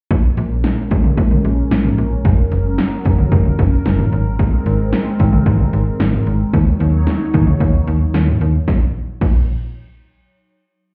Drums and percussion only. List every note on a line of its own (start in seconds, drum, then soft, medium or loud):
0.11 kick loud
0.11 closed hi-hat medium
0.37 closed hi-hat medium
0.64 snare loud
0.64 closed hi-hat medium
0.91 kick medium
0.91 closed hi-hat medium
1.04 mid tom medium
1.18 kick medium
1.18 closed hi-hat medium
1.31 mid tom medium
1.45 closed hi-hat medium
1.71 snare loud
1.71 closed hi-hat medium
1.85 mid tom medium
1.98 closed hi-hat medium
2.25 kick loud
2.25 closed hi-hat medium
2.52 closed hi-hat medium
2.78 snare loud
2.78 closed hi-hat medium
3.05 kick medium
3.05 closed hi-hat medium
3.18 mid tom medium
3.32 kick medium
3.32 closed hi-hat medium
3.45 mid tom medium
3.59 kick loud
3.59 closed hi-hat medium
3.86 snare loud
3.86 closed hi-hat medium
3.99 mid tom medium
4.13 closed hi-hat medium
4.39 kick loud
4.39 closed hi-hat medium
4.66 closed hi-hat medium
4.93 snare loud
4.93 closed hi-hat medium
5.19 kick medium
5.19 closed hi-hat medium
5.33 mid tom medium
5.46 kick medium
5.46 closed hi-hat medium
5.60 mid tom medium
5.73 closed hi-hat medium
6.00 snare loud
6.00 closed hi-hat medium
6.13 mid tom medium
6.27 closed hi-hat medium
6.54 kick loud
6.54 closed hi-hat medium
6.80 closed hi-hat medium
7.07 snare loud
7.07 closed hi-hat medium
7.34 kick medium
7.34 closed hi-hat medium
7.34 mid tom medium
7.47 mid tom medium
7.60 kick medium
7.60 closed hi-hat medium
7.88 closed hi-hat medium
8.14 snare loud
8.14 closed hi-hat medium
8.27 mid tom medium
8.41 closed hi-hat medium
8.68 kick loud
8.68 snare medium
9.21 kick loud
9.21 crash medium